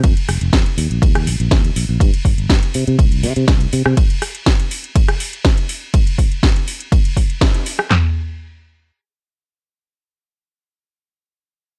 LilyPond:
<<
  \new Staff \with { instrumentName = "Fingered electric bass" } { \clef bass \time 4/4 \key ees \major \tempo 4 = 122 f,16 r16 f,,16 f,,16 f,16 r16 ees,16 bes,,16 ees,8 bes,,16 bes,,16 ees,16 r16 bes,,16 bes,,16 | g,16 r16 g,,16 g,,16 g,16 r16 c16 c16 c,8 c16 c16 c,16 r16 c16 c16 | r1 | r1 |
r1 | r1 | }
  \new DrumStaff \with { instrumentName = "Drums" } \drummode { \time 4/4 <hh bd cymr>16 hh16 <hho ss>16 hh16 <hh bd cymr sn>16 hh16 hho16 hh16 <hh bd cymr>16 <hh ss>16 hho16 hh16 <hh bd cymr sn>16 hh16 hho8 | <hh bd cymr>16 hh16 <hho bd>16 hh16 <hh bd cymr sn>16 hh16 hho16 hh16 <hh bd cymr>16 hh16 hho16 hh16 <hh bd cymr sn>16 hh16 hho16 ss16 | <hh bd cymr>16 hh16 <hho ss>16 hh16 <hh bd cymr sn>16 hh16 hho16 hh16 <hh bd cymr>16 <hh ss>16 hho16 hh16 <hh bd cymr sn>16 hh16 hho8 | <hh bd cymr>16 hh16 <hho bd>16 hh16 <hh bd cymr sn>16 hh16 hho16 hh16 <hh bd cymr>16 hh16 <hho bd>16 hh16 <hh bd cymr sn>16 hh16 hho16 ss16 |
<hc sn tomfh>4 r4 r4 r4 | r4 r4 r4 r4 | }
>>